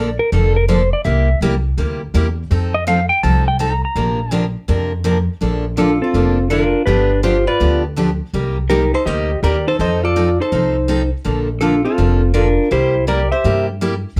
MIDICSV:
0, 0, Header, 1, 5, 480
1, 0, Start_track
1, 0, Key_signature, -2, "major"
1, 0, Tempo, 364299
1, 1383, Time_signature, 4, 2, 24, 8
1, 18709, End_track
2, 0, Start_track
2, 0, Title_t, "Electric slide guitar"
2, 0, Program_c, 0, 29
2, 0, Note_on_c, 0, 74, 77
2, 215, Note_off_c, 0, 74, 0
2, 255, Note_on_c, 0, 70, 89
2, 417, Note_off_c, 0, 70, 0
2, 444, Note_on_c, 0, 69, 76
2, 738, Note_off_c, 0, 69, 0
2, 743, Note_on_c, 0, 70, 77
2, 901, Note_off_c, 0, 70, 0
2, 908, Note_on_c, 0, 72, 79
2, 1213, Note_off_c, 0, 72, 0
2, 1227, Note_on_c, 0, 74, 85
2, 1376, Note_off_c, 0, 74, 0
2, 1381, Note_on_c, 0, 76, 83
2, 1828, Note_off_c, 0, 76, 0
2, 3617, Note_on_c, 0, 75, 88
2, 3774, Note_off_c, 0, 75, 0
2, 3791, Note_on_c, 0, 77, 89
2, 4069, Note_off_c, 0, 77, 0
2, 4075, Note_on_c, 0, 79, 97
2, 4243, Note_off_c, 0, 79, 0
2, 4260, Note_on_c, 0, 81, 86
2, 4565, Note_off_c, 0, 81, 0
2, 4584, Note_on_c, 0, 79, 85
2, 4737, Note_off_c, 0, 79, 0
2, 4749, Note_on_c, 0, 81, 74
2, 4908, Note_off_c, 0, 81, 0
2, 4908, Note_on_c, 0, 82, 80
2, 5058, Note_off_c, 0, 82, 0
2, 5071, Note_on_c, 0, 82, 80
2, 5757, Note_off_c, 0, 82, 0
2, 7616, Note_on_c, 0, 62, 58
2, 7628, Note_on_c, 0, 69, 80
2, 7911, Note_off_c, 0, 62, 0
2, 7912, Note_off_c, 0, 69, 0
2, 7929, Note_on_c, 0, 60, 70
2, 7931, Note_on_c, 0, 69, 81
2, 8531, Note_off_c, 0, 60, 0
2, 8565, Note_on_c, 0, 70, 74
2, 8570, Note_on_c, 0, 62, 65
2, 8594, Note_off_c, 0, 69, 0
2, 9019, Note_off_c, 0, 62, 0
2, 9028, Note_off_c, 0, 70, 0
2, 9033, Note_on_c, 0, 71, 87
2, 9043, Note_on_c, 0, 62, 71
2, 9492, Note_off_c, 0, 71, 0
2, 9497, Note_off_c, 0, 62, 0
2, 9535, Note_on_c, 0, 65, 72
2, 9536, Note_on_c, 0, 72, 91
2, 9833, Note_off_c, 0, 65, 0
2, 9853, Note_on_c, 0, 74, 99
2, 9863, Note_off_c, 0, 72, 0
2, 9863, Note_on_c, 0, 65, 72
2, 10302, Note_off_c, 0, 74, 0
2, 10307, Note_off_c, 0, 65, 0
2, 11458, Note_on_c, 0, 70, 89
2, 11463, Note_on_c, 0, 63, 66
2, 11758, Note_off_c, 0, 63, 0
2, 11779, Note_on_c, 0, 63, 66
2, 11786, Note_off_c, 0, 70, 0
2, 11791, Note_on_c, 0, 72, 97
2, 11931, Note_on_c, 0, 67, 82
2, 11932, Note_off_c, 0, 63, 0
2, 11938, Note_on_c, 0, 75, 106
2, 11955, Note_off_c, 0, 72, 0
2, 12385, Note_off_c, 0, 67, 0
2, 12429, Note_on_c, 0, 67, 74
2, 12434, Note_off_c, 0, 75, 0
2, 12440, Note_on_c, 0, 74, 91
2, 12722, Note_off_c, 0, 67, 0
2, 12728, Note_off_c, 0, 74, 0
2, 12748, Note_on_c, 0, 63, 66
2, 12756, Note_on_c, 0, 72, 97
2, 12898, Note_off_c, 0, 63, 0
2, 12907, Note_off_c, 0, 72, 0
2, 12912, Note_on_c, 0, 69, 81
2, 12924, Note_on_c, 0, 75, 101
2, 13204, Note_off_c, 0, 69, 0
2, 13222, Note_on_c, 0, 65, 72
2, 13233, Note_off_c, 0, 75, 0
2, 13238, Note_on_c, 0, 74, 88
2, 13670, Note_off_c, 0, 65, 0
2, 13707, Note_on_c, 0, 63, 64
2, 13721, Note_on_c, 0, 72, 81
2, 13726, Note_off_c, 0, 74, 0
2, 14614, Note_off_c, 0, 63, 0
2, 14621, Note_off_c, 0, 72, 0
2, 15293, Note_on_c, 0, 69, 77
2, 15310, Note_on_c, 0, 62, 58
2, 15592, Note_off_c, 0, 69, 0
2, 15604, Note_off_c, 0, 62, 0
2, 15608, Note_on_c, 0, 69, 81
2, 15618, Note_on_c, 0, 60, 63
2, 16220, Note_off_c, 0, 60, 0
2, 16258, Note_on_c, 0, 70, 85
2, 16265, Note_on_c, 0, 62, 63
2, 16281, Note_off_c, 0, 69, 0
2, 16713, Note_off_c, 0, 62, 0
2, 16759, Note_off_c, 0, 70, 0
2, 16760, Note_on_c, 0, 64, 82
2, 16762, Note_on_c, 0, 72, 104
2, 17202, Note_off_c, 0, 64, 0
2, 17231, Note_off_c, 0, 72, 0
2, 17235, Note_on_c, 0, 67, 75
2, 17237, Note_on_c, 0, 74, 98
2, 17526, Note_off_c, 0, 74, 0
2, 17527, Note_off_c, 0, 67, 0
2, 17544, Note_on_c, 0, 76, 94
2, 17553, Note_on_c, 0, 67, 79
2, 17991, Note_off_c, 0, 76, 0
2, 17995, Note_off_c, 0, 67, 0
2, 18709, End_track
3, 0, Start_track
3, 0, Title_t, "Hollow-body jazz guitar"
3, 0, Program_c, 1, 26
3, 7643, Note_on_c, 1, 65, 65
3, 7925, Note_off_c, 1, 65, 0
3, 7955, Note_on_c, 1, 65, 68
3, 8544, Note_off_c, 1, 65, 0
3, 8587, Note_on_c, 1, 65, 76
3, 9030, Note_off_c, 1, 65, 0
3, 9045, Note_on_c, 1, 67, 78
3, 9499, Note_off_c, 1, 67, 0
3, 9535, Note_on_c, 1, 67, 74
3, 9832, Note_off_c, 1, 67, 0
3, 9846, Note_on_c, 1, 71, 83
3, 10298, Note_off_c, 1, 71, 0
3, 11464, Note_on_c, 1, 67, 73
3, 11784, Note_off_c, 1, 67, 0
3, 11784, Note_on_c, 1, 69, 76
3, 11954, Note_off_c, 1, 69, 0
3, 11954, Note_on_c, 1, 72, 84
3, 12428, Note_off_c, 1, 72, 0
3, 12433, Note_on_c, 1, 70, 91
3, 12724, Note_off_c, 1, 70, 0
3, 12753, Note_on_c, 1, 69, 81
3, 12901, Note_off_c, 1, 69, 0
3, 12924, Note_on_c, 1, 72, 85
3, 13211, Note_off_c, 1, 72, 0
3, 13237, Note_on_c, 1, 69, 76
3, 13678, Note_off_c, 1, 69, 0
3, 13725, Note_on_c, 1, 69, 70
3, 14624, Note_off_c, 1, 69, 0
3, 15320, Note_on_c, 1, 65, 65
3, 15602, Note_off_c, 1, 65, 0
3, 15618, Note_on_c, 1, 65, 66
3, 16221, Note_off_c, 1, 65, 0
3, 16271, Note_on_c, 1, 65, 75
3, 16717, Note_off_c, 1, 65, 0
3, 16755, Note_on_c, 1, 67, 82
3, 17199, Note_off_c, 1, 67, 0
3, 17238, Note_on_c, 1, 70, 84
3, 17528, Note_off_c, 1, 70, 0
3, 17551, Note_on_c, 1, 72, 77
3, 17994, Note_off_c, 1, 72, 0
3, 18709, End_track
4, 0, Start_track
4, 0, Title_t, "Steel-string acoustic guitar"
4, 0, Program_c, 2, 25
4, 424, Note_on_c, 2, 50, 50
4, 424, Note_on_c, 2, 53, 59
4, 431, Note_on_c, 2, 62, 57
4, 434, Note_on_c, 2, 58, 60
4, 435, Note_on_c, 2, 69, 71
4, 720, Note_off_c, 2, 50, 0
4, 720, Note_off_c, 2, 53, 0
4, 724, Note_off_c, 2, 62, 0
4, 725, Note_off_c, 2, 58, 0
4, 726, Note_off_c, 2, 69, 0
4, 901, Note_on_c, 2, 50, 73
4, 904, Note_on_c, 2, 53, 75
4, 907, Note_on_c, 2, 58, 65
4, 907, Note_on_c, 2, 62, 75
4, 916, Note_on_c, 2, 69, 81
4, 1059, Note_off_c, 2, 50, 0
4, 1061, Note_off_c, 2, 53, 0
4, 1062, Note_off_c, 2, 58, 0
4, 1062, Note_off_c, 2, 62, 0
4, 1067, Note_off_c, 2, 69, 0
4, 1376, Note_on_c, 2, 48, 48
4, 1383, Note_on_c, 2, 55, 57
4, 1389, Note_on_c, 2, 58, 57
4, 1392, Note_on_c, 2, 67, 59
4, 1393, Note_on_c, 2, 64, 59
4, 1675, Note_off_c, 2, 48, 0
4, 1678, Note_off_c, 2, 55, 0
4, 1682, Note_off_c, 2, 58, 0
4, 1683, Note_off_c, 2, 64, 0
4, 1683, Note_off_c, 2, 67, 0
4, 1873, Note_on_c, 2, 48, 74
4, 1875, Note_on_c, 2, 55, 73
4, 1877, Note_on_c, 2, 58, 78
4, 1877, Note_on_c, 2, 64, 77
4, 1882, Note_on_c, 2, 67, 86
4, 2024, Note_off_c, 2, 48, 0
4, 2025, Note_off_c, 2, 55, 0
4, 2026, Note_off_c, 2, 58, 0
4, 2026, Note_off_c, 2, 64, 0
4, 2029, Note_off_c, 2, 67, 0
4, 2342, Note_on_c, 2, 48, 55
4, 2345, Note_on_c, 2, 55, 59
4, 2347, Note_on_c, 2, 58, 63
4, 2349, Note_on_c, 2, 64, 65
4, 2357, Note_on_c, 2, 67, 56
4, 2637, Note_off_c, 2, 48, 0
4, 2639, Note_off_c, 2, 55, 0
4, 2639, Note_off_c, 2, 58, 0
4, 2640, Note_off_c, 2, 64, 0
4, 2644, Note_off_c, 2, 67, 0
4, 2826, Note_on_c, 2, 48, 83
4, 2826, Note_on_c, 2, 58, 73
4, 2830, Note_on_c, 2, 55, 73
4, 2833, Note_on_c, 2, 64, 77
4, 2837, Note_on_c, 2, 67, 83
4, 2979, Note_off_c, 2, 48, 0
4, 2979, Note_off_c, 2, 58, 0
4, 2981, Note_off_c, 2, 55, 0
4, 2983, Note_off_c, 2, 64, 0
4, 2985, Note_off_c, 2, 67, 0
4, 3306, Note_on_c, 2, 53, 55
4, 3307, Note_on_c, 2, 60, 56
4, 3315, Note_on_c, 2, 63, 58
4, 3316, Note_on_c, 2, 69, 65
4, 3598, Note_off_c, 2, 53, 0
4, 3598, Note_off_c, 2, 60, 0
4, 3602, Note_off_c, 2, 63, 0
4, 3603, Note_off_c, 2, 69, 0
4, 3779, Note_on_c, 2, 53, 84
4, 3784, Note_on_c, 2, 60, 80
4, 3789, Note_on_c, 2, 69, 78
4, 3791, Note_on_c, 2, 63, 76
4, 3935, Note_off_c, 2, 53, 0
4, 3938, Note_off_c, 2, 60, 0
4, 3940, Note_off_c, 2, 69, 0
4, 3941, Note_off_c, 2, 63, 0
4, 4261, Note_on_c, 2, 53, 61
4, 4269, Note_on_c, 2, 60, 55
4, 4273, Note_on_c, 2, 63, 66
4, 4274, Note_on_c, 2, 69, 61
4, 4555, Note_off_c, 2, 53, 0
4, 4558, Note_off_c, 2, 60, 0
4, 4561, Note_off_c, 2, 63, 0
4, 4561, Note_off_c, 2, 69, 0
4, 4732, Note_on_c, 2, 53, 74
4, 4738, Note_on_c, 2, 60, 68
4, 4745, Note_on_c, 2, 63, 75
4, 4748, Note_on_c, 2, 69, 83
4, 4891, Note_off_c, 2, 53, 0
4, 4894, Note_off_c, 2, 60, 0
4, 4897, Note_off_c, 2, 63, 0
4, 4899, Note_off_c, 2, 69, 0
4, 5212, Note_on_c, 2, 48, 51
4, 5214, Note_on_c, 2, 53, 55
4, 5221, Note_on_c, 2, 58, 62
4, 5227, Note_on_c, 2, 70, 58
4, 5228, Note_on_c, 2, 62, 62
4, 5510, Note_off_c, 2, 48, 0
4, 5510, Note_off_c, 2, 53, 0
4, 5514, Note_off_c, 2, 58, 0
4, 5517, Note_off_c, 2, 62, 0
4, 5517, Note_off_c, 2, 70, 0
4, 5681, Note_on_c, 2, 48, 78
4, 5689, Note_on_c, 2, 53, 81
4, 5690, Note_on_c, 2, 62, 89
4, 5691, Note_on_c, 2, 58, 74
4, 5697, Note_on_c, 2, 70, 78
4, 5845, Note_off_c, 2, 48, 0
4, 5849, Note_off_c, 2, 53, 0
4, 5849, Note_off_c, 2, 62, 0
4, 5850, Note_off_c, 2, 58, 0
4, 5853, Note_off_c, 2, 70, 0
4, 6167, Note_on_c, 2, 48, 60
4, 6171, Note_on_c, 2, 53, 57
4, 6178, Note_on_c, 2, 70, 64
4, 6179, Note_on_c, 2, 58, 60
4, 6179, Note_on_c, 2, 62, 64
4, 6467, Note_off_c, 2, 48, 0
4, 6469, Note_off_c, 2, 53, 0
4, 6473, Note_off_c, 2, 58, 0
4, 6473, Note_off_c, 2, 62, 0
4, 6473, Note_off_c, 2, 70, 0
4, 6643, Note_on_c, 2, 48, 74
4, 6644, Note_on_c, 2, 53, 77
4, 6652, Note_on_c, 2, 58, 79
4, 6654, Note_on_c, 2, 62, 76
4, 6655, Note_on_c, 2, 70, 78
4, 6806, Note_off_c, 2, 48, 0
4, 6806, Note_off_c, 2, 53, 0
4, 6810, Note_off_c, 2, 58, 0
4, 6811, Note_off_c, 2, 62, 0
4, 6812, Note_off_c, 2, 70, 0
4, 7124, Note_on_c, 2, 50, 50
4, 7134, Note_on_c, 2, 53, 52
4, 7136, Note_on_c, 2, 62, 61
4, 7137, Note_on_c, 2, 58, 58
4, 7137, Note_on_c, 2, 69, 63
4, 7426, Note_off_c, 2, 50, 0
4, 7431, Note_off_c, 2, 53, 0
4, 7432, Note_off_c, 2, 58, 0
4, 7432, Note_off_c, 2, 62, 0
4, 7432, Note_off_c, 2, 69, 0
4, 7602, Note_on_c, 2, 50, 70
4, 7604, Note_on_c, 2, 53, 70
4, 7608, Note_on_c, 2, 58, 75
4, 7615, Note_on_c, 2, 62, 80
4, 7615, Note_on_c, 2, 69, 82
4, 7766, Note_off_c, 2, 50, 0
4, 7767, Note_off_c, 2, 53, 0
4, 7769, Note_off_c, 2, 58, 0
4, 7772, Note_off_c, 2, 62, 0
4, 7772, Note_off_c, 2, 69, 0
4, 8093, Note_on_c, 2, 50, 60
4, 8094, Note_on_c, 2, 53, 54
4, 8100, Note_on_c, 2, 62, 54
4, 8101, Note_on_c, 2, 58, 61
4, 8104, Note_on_c, 2, 69, 59
4, 8391, Note_off_c, 2, 50, 0
4, 8391, Note_off_c, 2, 53, 0
4, 8394, Note_off_c, 2, 62, 0
4, 8395, Note_off_c, 2, 58, 0
4, 8397, Note_off_c, 2, 69, 0
4, 8566, Note_on_c, 2, 50, 74
4, 8573, Note_on_c, 2, 53, 69
4, 8573, Note_on_c, 2, 58, 76
4, 8575, Note_on_c, 2, 62, 81
4, 8575, Note_on_c, 2, 69, 80
4, 8728, Note_off_c, 2, 50, 0
4, 8732, Note_off_c, 2, 53, 0
4, 8732, Note_off_c, 2, 58, 0
4, 8733, Note_off_c, 2, 62, 0
4, 8733, Note_off_c, 2, 69, 0
4, 9054, Note_on_c, 2, 50, 51
4, 9055, Note_on_c, 2, 59, 64
4, 9059, Note_on_c, 2, 53, 55
4, 9064, Note_on_c, 2, 62, 63
4, 9068, Note_on_c, 2, 67, 60
4, 9352, Note_off_c, 2, 50, 0
4, 9353, Note_off_c, 2, 59, 0
4, 9355, Note_off_c, 2, 53, 0
4, 9357, Note_off_c, 2, 62, 0
4, 9359, Note_off_c, 2, 67, 0
4, 9528, Note_on_c, 2, 50, 77
4, 9528, Note_on_c, 2, 53, 74
4, 9530, Note_on_c, 2, 59, 82
4, 9539, Note_on_c, 2, 67, 88
4, 9540, Note_on_c, 2, 62, 78
4, 9690, Note_off_c, 2, 50, 0
4, 9691, Note_off_c, 2, 53, 0
4, 9691, Note_off_c, 2, 59, 0
4, 9696, Note_off_c, 2, 62, 0
4, 9696, Note_off_c, 2, 67, 0
4, 10015, Note_on_c, 2, 50, 58
4, 10020, Note_on_c, 2, 53, 57
4, 10024, Note_on_c, 2, 59, 62
4, 10027, Note_on_c, 2, 62, 65
4, 10031, Note_on_c, 2, 67, 65
4, 10314, Note_off_c, 2, 50, 0
4, 10317, Note_off_c, 2, 53, 0
4, 10318, Note_off_c, 2, 59, 0
4, 10320, Note_off_c, 2, 62, 0
4, 10322, Note_off_c, 2, 67, 0
4, 10494, Note_on_c, 2, 50, 77
4, 10503, Note_on_c, 2, 59, 78
4, 10505, Note_on_c, 2, 53, 79
4, 10507, Note_on_c, 2, 62, 83
4, 10511, Note_on_c, 2, 67, 80
4, 10655, Note_off_c, 2, 50, 0
4, 10659, Note_off_c, 2, 59, 0
4, 10660, Note_off_c, 2, 53, 0
4, 10661, Note_off_c, 2, 62, 0
4, 10663, Note_off_c, 2, 67, 0
4, 10983, Note_on_c, 2, 48, 53
4, 10987, Note_on_c, 2, 55, 57
4, 10991, Note_on_c, 2, 58, 57
4, 10994, Note_on_c, 2, 67, 54
4, 10997, Note_on_c, 2, 63, 58
4, 11279, Note_off_c, 2, 48, 0
4, 11281, Note_off_c, 2, 55, 0
4, 11283, Note_off_c, 2, 58, 0
4, 11285, Note_off_c, 2, 67, 0
4, 11286, Note_off_c, 2, 63, 0
4, 11457, Note_on_c, 2, 48, 69
4, 11460, Note_on_c, 2, 55, 74
4, 11467, Note_on_c, 2, 58, 80
4, 11468, Note_on_c, 2, 63, 76
4, 11469, Note_on_c, 2, 67, 86
4, 11617, Note_off_c, 2, 48, 0
4, 11619, Note_off_c, 2, 55, 0
4, 11622, Note_off_c, 2, 58, 0
4, 11623, Note_off_c, 2, 63, 0
4, 11623, Note_off_c, 2, 67, 0
4, 11948, Note_on_c, 2, 48, 54
4, 11948, Note_on_c, 2, 58, 66
4, 11951, Note_on_c, 2, 55, 61
4, 11956, Note_on_c, 2, 63, 64
4, 11959, Note_on_c, 2, 67, 62
4, 12243, Note_off_c, 2, 48, 0
4, 12243, Note_off_c, 2, 58, 0
4, 12244, Note_off_c, 2, 55, 0
4, 12247, Note_off_c, 2, 63, 0
4, 12248, Note_off_c, 2, 67, 0
4, 12434, Note_on_c, 2, 48, 65
4, 12437, Note_on_c, 2, 55, 71
4, 12439, Note_on_c, 2, 63, 82
4, 12441, Note_on_c, 2, 58, 71
4, 12443, Note_on_c, 2, 67, 78
4, 12587, Note_off_c, 2, 48, 0
4, 12588, Note_off_c, 2, 55, 0
4, 12589, Note_off_c, 2, 63, 0
4, 12590, Note_off_c, 2, 58, 0
4, 12591, Note_off_c, 2, 67, 0
4, 12909, Note_on_c, 2, 60, 57
4, 12910, Note_on_c, 2, 53, 58
4, 12918, Note_on_c, 2, 63, 53
4, 12918, Note_on_c, 2, 69, 63
4, 13204, Note_off_c, 2, 60, 0
4, 13205, Note_off_c, 2, 53, 0
4, 13208, Note_off_c, 2, 69, 0
4, 13209, Note_off_c, 2, 63, 0
4, 13386, Note_on_c, 2, 53, 70
4, 13390, Note_on_c, 2, 60, 75
4, 13391, Note_on_c, 2, 63, 70
4, 13399, Note_on_c, 2, 69, 73
4, 13544, Note_off_c, 2, 53, 0
4, 13546, Note_off_c, 2, 60, 0
4, 13546, Note_off_c, 2, 63, 0
4, 13550, Note_off_c, 2, 69, 0
4, 13862, Note_on_c, 2, 53, 52
4, 13862, Note_on_c, 2, 60, 57
4, 13869, Note_on_c, 2, 63, 60
4, 13871, Note_on_c, 2, 69, 62
4, 14161, Note_off_c, 2, 53, 0
4, 14161, Note_off_c, 2, 60, 0
4, 14165, Note_off_c, 2, 63, 0
4, 14166, Note_off_c, 2, 69, 0
4, 14338, Note_on_c, 2, 53, 77
4, 14345, Note_on_c, 2, 60, 74
4, 14350, Note_on_c, 2, 63, 68
4, 14351, Note_on_c, 2, 69, 80
4, 14500, Note_off_c, 2, 53, 0
4, 14504, Note_off_c, 2, 60, 0
4, 14507, Note_off_c, 2, 63, 0
4, 14507, Note_off_c, 2, 69, 0
4, 14817, Note_on_c, 2, 50, 49
4, 14818, Note_on_c, 2, 53, 60
4, 14822, Note_on_c, 2, 58, 55
4, 14826, Note_on_c, 2, 62, 60
4, 14830, Note_on_c, 2, 69, 54
4, 15119, Note_off_c, 2, 50, 0
4, 15120, Note_off_c, 2, 53, 0
4, 15122, Note_off_c, 2, 58, 0
4, 15124, Note_off_c, 2, 62, 0
4, 15126, Note_off_c, 2, 69, 0
4, 15292, Note_on_c, 2, 50, 69
4, 15300, Note_on_c, 2, 53, 74
4, 15300, Note_on_c, 2, 58, 69
4, 15304, Note_on_c, 2, 62, 72
4, 15309, Note_on_c, 2, 69, 74
4, 15458, Note_off_c, 2, 50, 0
4, 15462, Note_off_c, 2, 53, 0
4, 15462, Note_off_c, 2, 58, 0
4, 15463, Note_off_c, 2, 62, 0
4, 15466, Note_off_c, 2, 69, 0
4, 15783, Note_on_c, 2, 50, 57
4, 15784, Note_on_c, 2, 53, 57
4, 15788, Note_on_c, 2, 58, 57
4, 15792, Note_on_c, 2, 62, 60
4, 15798, Note_on_c, 2, 69, 54
4, 16082, Note_off_c, 2, 50, 0
4, 16083, Note_off_c, 2, 53, 0
4, 16085, Note_off_c, 2, 58, 0
4, 16087, Note_off_c, 2, 62, 0
4, 16090, Note_off_c, 2, 69, 0
4, 16255, Note_on_c, 2, 50, 74
4, 16258, Note_on_c, 2, 53, 77
4, 16263, Note_on_c, 2, 58, 65
4, 16264, Note_on_c, 2, 62, 82
4, 16267, Note_on_c, 2, 69, 80
4, 16419, Note_off_c, 2, 50, 0
4, 16421, Note_off_c, 2, 53, 0
4, 16423, Note_off_c, 2, 58, 0
4, 16424, Note_off_c, 2, 62, 0
4, 16425, Note_off_c, 2, 69, 0
4, 16744, Note_on_c, 2, 55, 56
4, 16747, Note_on_c, 2, 48, 51
4, 16749, Note_on_c, 2, 64, 56
4, 16752, Note_on_c, 2, 58, 57
4, 16755, Note_on_c, 2, 67, 60
4, 17043, Note_off_c, 2, 55, 0
4, 17044, Note_off_c, 2, 48, 0
4, 17045, Note_off_c, 2, 64, 0
4, 17046, Note_off_c, 2, 58, 0
4, 17048, Note_off_c, 2, 67, 0
4, 17222, Note_on_c, 2, 48, 70
4, 17227, Note_on_c, 2, 55, 65
4, 17232, Note_on_c, 2, 58, 72
4, 17232, Note_on_c, 2, 64, 71
4, 17236, Note_on_c, 2, 67, 71
4, 17382, Note_off_c, 2, 48, 0
4, 17385, Note_off_c, 2, 55, 0
4, 17387, Note_off_c, 2, 58, 0
4, 17387, Note_off_c, 2, 64, 0
4, 17389, Note_off_c, 2, 67, 0
4, 17713, Note_on_c, 2, 48, 63
4, 17721, Note_on_c, 2, 55, 53
4, 17724, Note_on_c, 2, 58, 65
4, 17724, Note_on_c, 2, 64, 59
4, 17724, Note_on_c, 2, 67, 67
4, 18006, Note_off_c, 2, 48, 0
4, 18010, Note_off_c, 2, 55, 0
4, 18012, Note_off_c, 2, 58, 0
4, 18012, Note_off_c, 2, 64, 0
4, 18012, Note_off_c, 2, 67, 0
4, 18199, Note_on_c, 2, 48, 69
4, 18200, Note_on_c, 2, 55, 83
4, 18207, Note_on_c, 2, 58, 69
4, 18207, Note_on_c, 2, 64, 80
4, 18213, Note_on_c, 2, 67, 88
4, 18350, Note_off_c, 2, 48, 0
4, 18350, Note_off_c, 2, 55, 0
4, 18354, Note_off_c, 2, 58, 0
4, 18354, Note_off_c, 2, 64, 0
4, 18357, Note_off_c, 2, 67, 0
4, 18709, End_track
5, 0, Start_track
5, 0, Title_t, "Upright bass"
5, 0, Program_c, 3, 32
5, 0, Note_on_c, 3, 34, 75
5, 234, Note_off_c, 3, 34, 0
5, 425, Note_on_c, 3, 29, 80
5, 1192, Note_off_c, 3, 29, 0
5, 1381, Note_on_c, 3, 36, 91
5, 1765, Note_off_c, 3, 36, 0
5, 1855, Note_on_c, 3, 36, 80
5, 2265, Note_off_c, 3, 36, 0
5, 2337, Note_on_c, 3, 38, 80
5, 2746, Note_off_c, 3, 38, 0
5, 2818, Note_on_c, 3, 40, 86
5, 3227, Note_off_c, 3, 40, 0
5, 3302, Note_on_c, 3, 41, 88
5, 4067, Note_off_c, 3, 41, 0
5, 4262, Note_on_c, 3, 36, 90
5, 5027, Note_off_c, 3, 36, 0
5, 5211, Note_on_c, 3, 34, 82
5, 5980, Note_off_c, 3, 34, 0
5, 6173, Note_on_c, 3, 41, 88
5, 6942, Note_off_c, 3, 41, 0
5, 7130, Note_on_c, 3, 34, 83
5, 7901, Note_off_c, 3, 34, 0
5, 8086, Note_on_c, 3, 29, 78
5, 8860, Note_off_c, 3, 29, 0
5, 9051, Note_on_c, 3, 31, 82
5, 9824, Note_off_c, 3, 31, 0
5, 10019, Note_on_c, 3, 38, 86
5, 10789, Note_off_c, 3, 38, 0
5, 10981, Note_on_c, 3, 36, 78
5, 11752, Note_off_c, 3, 36, 0
5, 11939, Note_on_c, 3, 38, 82
5, 12350, Note_off_c, 3, 38, 0
5, 12421, Note_on_c, 3, 39, 87
5, 12832, Note_off_c, 3, 39, 0
5, 12901, Note_on_c, 3, 41, 85
5, 13672, Note_off_c, 3, 41, 0
5, 13863, Note_on_c, 3, 36, 75
5, 14634, Note_off_c, 3, 36, 0
5, 14828, Note_on_c, 3, 34, 82
5, 15597, Note_off_c, 3, 34, 0
5, 15789, Note_on_c, 3, 29, 87
5, 16557, Note_off_c, 3, 29, 0
5, 16752, Note_on_c, 3, 36, 81
5, 17519, Note_off_c, 3, 36, 0
5, 17713, Note_on_c, 3, 43, 76
5, 18478, Note_off_c, 3, 43, 0
5, 18661, Note_on_c, 3, 41, 80
5, 18709, Note_off_c, 3, 41, 0
5, 18709, End_track
0, 0, End_of_file